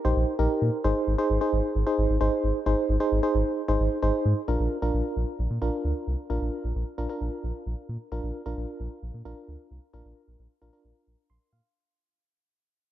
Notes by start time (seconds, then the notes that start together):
0.05 A#1 D#4 G4 C5
0.16 A#1
0.39 A#1 D#4 G4 A#4
0.62 A#2
0.84 G#1 D#4 G#4 C5
1.07 G#1
1.18 D#4 G#4 C5
1.30 G#1
1.41 D#4 G#4 C5
1.53 G#1
1.75 G#1
1.87 D#4 G#4 C5
1.98 G#1
2.10 G#1
2.21 G#1 D#4 G#4 C5
2.44 G#1
2.66 G#1 D#4 G#4 C5
2.89 G#1
3.00 D#4 G#4 C5
3.12 G#1
3.23 D#4 G#4 C5
3.35 G#1
3.68 G#1 D#4 G#4 C5
3.80 G#1
4.03 G#1 D#4 G#4 C5
4.25 G#2
4.48 A#1 D4 F4 A#4
4.60 A#1
4.82 A#1 D4 F4 A#4
4.94 A#1
5.16 A#1
5.39 A#1
5.50 A#2
5.62 A#1 D4 F4 A#4
5.84 D2
6.07 C2
6.30 A#1 D4 F4 A#4
6.41 A#1
6.64 A#1
6.75 A#1
6.98 A#1 D4 F4 A#4
7.09 D4 F4 A#4
7.21 A#1
7.44 A#1
7.66 A#1
7.89 A#2
8.12 A#1 D4 F4 A#4
8.23 A#1
8.46 A#1 D4 F4 A#4
8.57 A#1
8.80 A#1
9.03 A#1
9.14 A#2
9.25 A#1 D4 F4 A#4
9.48 D2
9.71 C2
9.93 A#1 D4 F4 A#4
10.05 A#1
10.28 A#1
10.39 A#1
10.62 A#1 D4 F4 A#4
10.73 D4 F4 A#4
10.84 A#1
11.07 A#1
11.30 A#1 C6
11.53 A#2 F5